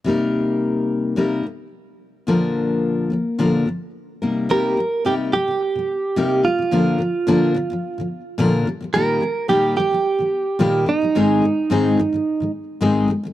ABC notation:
X:1
M:4/4
L:1/16
Q:"Swing 16ths" 1/4=108
K:Cm
V:1 name="Clean electric guitar"
z16 | z16 | B4 G2 G8 F2- | F8- F2 z6 |
B4 G2 G8 E2- | E8- E2 z6 |]
V:2 name="Steel-string acoustic guitar" clef=bass
[C,G,B,EB]8 [C,G,B,EB]2 C,2 z4 | [B,,D,F,B,DB]6 [B,,D,F,]2 [B,,D,F,B,DB]2 [B,,D,F,]2 z2 [C,G,B,EB]2 | [C,G,B,EG]2 [C,G,]2 [C,G,B,EG]2 [C,G,] [C,G,]2 [C,G,]2 z [C,G,B,EG]2 [C,G,] [C,G,] | [B,,D,F,B,DB]2 [B,,D,F,]2 [B,,D,F,B,DB]2 [B,,D,F,] [B,,D,F,]2 [B,,D,F,]2 z [B,,D,F,B,DB]2 [B,,E,G,] [B,,E,G,] |
[B,,E,G,B,EG]2 [B,,E,G,]2 [B,,E,G,B,EG]2 [B,,E,G,] [B,,E,G,]2 [B,,E,G,]2 z [B,,E,G,B,EG]2 [B,,E,G,] [B,,E,G,] | [A,,E,A,CEA]2 [A,,E,A,]2 [A,,E,A,CEA]2 [A,,E,A,] [A,,E,A,]2 [A,,E,A,]2 z [A,,E,A,CEA]2 [A,,E,A,] [A,,E,A,] |]